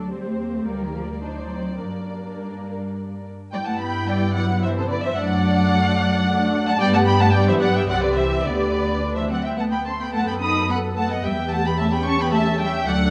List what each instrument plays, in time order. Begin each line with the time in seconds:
Already playing: double bass section D2, cello section F#3, violin section D4
0.11 double bass section D#2, cello section G3, violin section C4 C5, viola section G4 C5
0.26 cello section A3
0.40 cello section A#3
0.54 cello section A3
0.66 double bass section D2, cello section G3, violin section A#3 D5, viola section A#4
0.82 cello section D#3
0.95 cello section F3
1.10 cello section G3
1.22 cello section F#3, violin section D4, viola section D#4 C5
1.53 violin section C4
1.80 double bass section G2, cello section F#3, violin section A#3, viola section D4 A#4
2.39 cello section G3
3.52 double bass section G2, cello section G3, viola section B3 E4, violin section D5 G5
3.66 cello section A3, violin section F#5 A5
3.80 cello section B3, violin section G5 B5
4.08 cello section G3, violin section D5 G5
4.36 cello section F#3, violin section D5 F#5
4.63 cello section E3, violin section C5 E5
4.76 cello section C3, violin section A4 C5
4.90 cello section D3, violin section B4 D5
5.03 cello section E3, violin section C5 E5
5.17 double bass section F#2, cello section F#3, viola section A3 D4, violin section D5 F#5
6.27 viola section A3 D4
6.66 cello section A3, violin section F#5 A5
6.79 double bass section G2, cello section G3, viola section B3 G4, violin section D5 G5
6.93 cello section A3, violin section F#5 A5
7.07 cello section B3, violin section G5 B5
7.20 cello section A3, violin section F#5 A5
7.33 cello section G3, viola section B3 G4, violin section D5 G5
7.48 cello section E3, violin section C5 E5
7.60 cello section F#3, violin section D5 F#5
7.74 cello section G3, violin section E5 G5
7.88 double bass section C2, cello section F#3, viola section C4 G4, violin section D5 F#5
8.01 cello section D3, violin section B4 D5
8.16 cello section E3, violin section C5 E5
8.44 double bass section D2, cello section D3, viola section B3 G4, violin section B4 D5
9.02 viola section D4
9.15 cello section E3, violin section C5 E5
9.29 cello section F#3, viola section C4, violin section D5 F#5
9.42 cello section G3, violin section E5 G5
9.57 cello section A3, viola section B3, violin section F#5 A5
9.71 cello section B3, violin section G5 B5
9.85 viola section A3, cello section C4, violin section A5 C6
9.99 cello section B3, violin section G5 B5
10.13 double bass section F#2, cello section A3, viola section B3 A4, violin section F#5 A5
10.27 cello section B3, violin section G5 B5
10.41 cello section D#4, violin section B5 D#6
10.69 cello section B3, violin section F#5 B5
10.97 cello section A3, violin section F#5 A5
11.10 cello section F#3, violin section D#5 F#5
11.24 double bass section E2, cello section G3, viola section G4, violin section E5 G5
11.51 cello section A3, violin section F#5 A5
11.64 cello section B3, violin section G5 B5
11.78 cello section A3, viola section C#4, violin section E5 A5
11.92 cello section B3, violin section G5 B5
12.06 cello section C#4, violin section A5 C#6
12.19 cello section B3, violin section G5 B5
12.33 cello section A3, violin section E5 A5
12.60 cello section G3, violin section E5 G5
12.87 double bass section D2, cello section F#3, viola section D4 A4, violin section D5 F#5